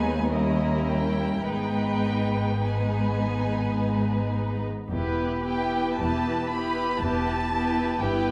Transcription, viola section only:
Already playing: G#3 B3
0.34 G3 C#4
1.48 G#3 B3
2.65 G#3 B3
4.91 B3 E4
5.46 B3 E4
6.01 B3 E4
6.53 B3 E4
7.03 B3 E4
7.52 B3 E4
8.01 B3 E4

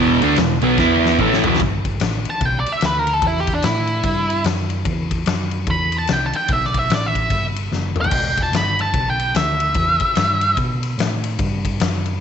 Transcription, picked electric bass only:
Already playing: E1
0.22 D2
0.36 E1
0.62 B1
0.78 E2
1.19 A1
1.45 E1
1.59 G1
2.01 A1
2.41 B1
2.68 muted picked electric bass stroke
2.83 D2
3.22 E2
3.64 A2
4.04 G2
4.45 F#2
4.85 E2
5.27 F#2
5.68 E2
6.10 C2
6.35 muted picked electric bass stroke
6.49 B1
6.90 A1
7.30 G1
7.72 F#1
8.12 E1
8.52 G1
8.94 B1
9.35 D2
9.76 E2
10.17 G2
10.57 B2
10.98 A2
11.39 G2
11.81 F#2

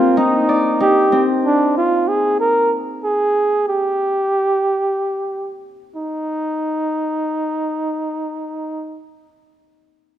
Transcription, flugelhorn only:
Already playing: F4
0.19 D#4
0.81 G4
1.46 D4
1.77 F4
2.08 G#4
2.40 A#4
3.04 G#4
3.69 G4
5.96 D#4

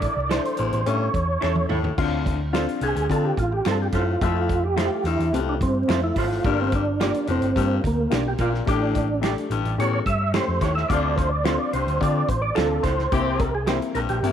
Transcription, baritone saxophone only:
0.57 E2
0.86 G2
1.70 A2
1.99 D2
2.81 G2
3.09 F2
3.93 A2
4.21 F2
5.04 G2
5.33 F2
6.17 A2
6.44 G2
7.28 A2
7.56 G2
8.39 A#2
8.67 A2
9.51 G2
9.79 E2
10.61 A2
10.89 D2
11.73 G2
12.00 F2
12.84 A2
13.12 C3
13.95 G2
14.23 E2

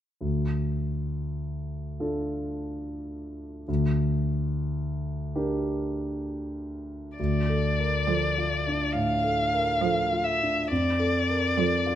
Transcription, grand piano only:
0.21 D2
2.00 D4 F4 A4
3.68 D2
5.35 D4 G4 A#4
7.19 D2
7.49 A4
7.79 A#4
8.08 A4
8.38 F4
8.67 D4
8.95 A2
9.24 A4
9.54 A#4
9.84 A4
10.13 F4
10.42 D4
10.71 F2
11.00 A4
11.30 A#4
11.59 A4
11.86 F4

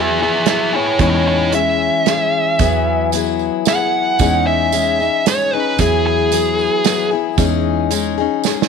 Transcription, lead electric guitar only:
Already playing: G#4 E5
0.23 G#4 E5
0.49 G#4 E5
0.74 E4 C#5
1.00 E4 C#5
1.27 E4 C#5
1.55 E5
3.68 F#5
4.47 E5
5.28 C#5
5.54 B4
5.80 G#4
6.07 G#4

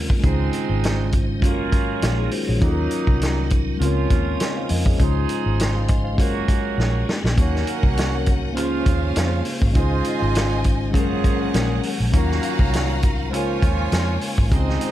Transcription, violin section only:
7.37 C#4 A#4 F#5
8.55 C#4 C5 F5
9.75 F4 D#5 G#5
10.93 C#4 A#4 F#5
12.13 F#4 F5 A#5
13.32 F4 C#5 G#5
14.52 C4 G#4 D#5

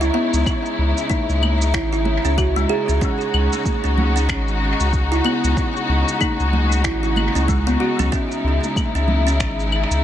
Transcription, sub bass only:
Already playing: C#2
0.33 C#2
0.78 C#2
1.29 C#2
1.74 G#1
2.24 C#2
2.89 C#2
3.34 C#2
3.84 C#2
4.29 G#1
4.80 C#2
5.44 C#2
5.89 C#2
6.39 C#2
6.85 G#1
7.35 C#2
7.99 C#2
8.44 C#2
8.95 C#2
9.40 G#1
9.90 C#2

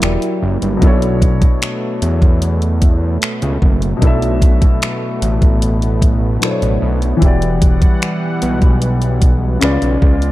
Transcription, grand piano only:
0.00 F#3 E4 G4 A#4
0.05 D5
0.77 B2 F#3
0.81 D4 E4 A4
0.87 C#5
3.97 B2 F#3
4.01 D4 E4 A4
4.07 E5
6.39 B2 F#3 D4 E4
6.43 A4 C5
6.51 C#5
7.17 E3 E4
7.22 F#4 G4
7.27 D5
9.59 C#3 C#4 F4 B4
9.64 D5

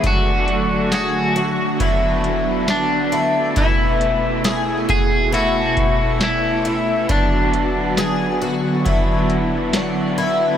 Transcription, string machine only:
0.03 D3 F#3 A3 F#4
1.80 B3
3.56 B2 A3 E4
5.32 C#5
7.10 D3 F#3 B3 F#4
8.86 E4

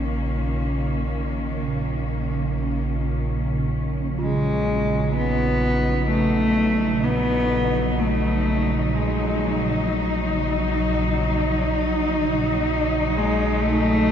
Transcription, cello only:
4.20 G#3
5.16 B3
6.10 A3
7.04 B3
7.99 A3
8.94 G#3
13.15 G#3
13.61 A3

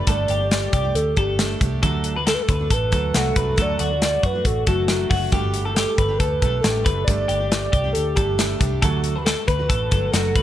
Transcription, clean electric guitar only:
0.08 A4
0.30 G4
0.73 G4
1.17 A4
1.61 G4
1.83 A4
2.16 B4
2.27 A4
2.49 B4
2.71 A4
2.93 A4
3.15 F#4
3.37 B4
3.58 A4
3.80 F#4
4.23 F#4
4.67 A4
5.10 F#4
5.33 G4
5.66 A4
5.77 G4
5.98 B4
6.20 A4
6.42 A4
6.64 G4
6.85 B4
7.08 A4
7.28 G4
7.72 G4
8.16 A4
8.59 G4
8.82 A4
9.16 B4
9.26 A4
9.48 B4
9.69 A4
9.92 A4
10.13 F#4
10.36 B4

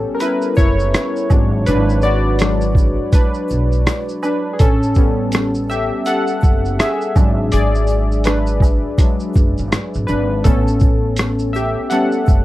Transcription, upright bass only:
0.58 F#1
1.31 G#1
1.68 G#1
3.51 B1
4.61 A1
6.43 F#1
7.16 G#1
7.53 G#1
9.36 F#1
9.59 G#1
9.96 G#1
10.09 G#1
10.46 A1
12.29 F#1

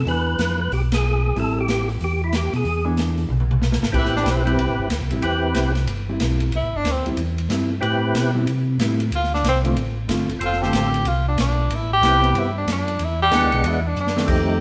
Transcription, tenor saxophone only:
3.98 E4
4.17 D4
4.30 C4
6.56 E4
6.76 D4
6.91 C4
9.16 F4
9.34 D4
9.49 C4
10.46 F4
10.62 G4
11.08 F4
11.29 D4
11.41 D4
11.75 E4
11.93 G4
12.39 E4
12.58 D4
12.72 D4
13.05 E4
13.22 G4
13.68 E4
13.87 D4
14.01 D4

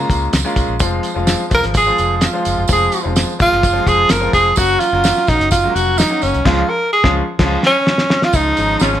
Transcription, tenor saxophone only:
Already playing: A#3
1.54 A#4
1.77 G#4
2.16 G#4
2.25 F4
2.73 G#4
3.41 F4
3.88 G#4
4.11 A#4
4.34 G#4
4.57 F#4
4.80 F4
5.29 D#4
5.51 F4
5.75 F#4
5.98 D#4
6.23 C#4
6.46 F4
6.69 A#4
6.92 G#4
7.66 C#4
8.24 F4
8.35 D#4
8.82 C#4

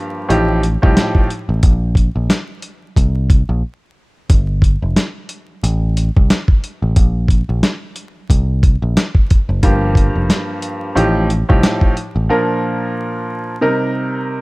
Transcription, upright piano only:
Already playing: G2 F3 A#3 G4
0.29 A2 F3 D#4 G4
0.82 A2 F3 D#4 G4
9.63 G2 F3 A#3 G4
10.95 A2 F3 D#4 G4
11.49 A2 F3 D#4 G4
12.29 A#2 F3 D4 A#4
13.61 C3 G3 D#4 A#4

